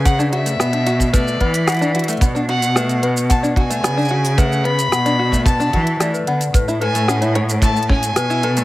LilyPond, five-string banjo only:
\new Staff \with { instrumentName = "Five-string banjo" } { \time 4/4 \key b \dorian \tempo 4 = 111 r16 d'16 fis'16 a16 b16 d'16 fis'8 a8 b16 r8 d'16 fis'16 a16 | b16 d'16 fis'8 a8 b16 r8 d'16 fis'16 a16 b16 d'16 fis'8 | a8 b16 r8 d'16 fis'16 a16 b16 d'16 fis'8 a8 b16 r16 | r16 e'16 a'16 a16 cis'16 e'16 cis''8 a8 cis'16 r8 e'16 a'16 a16 | }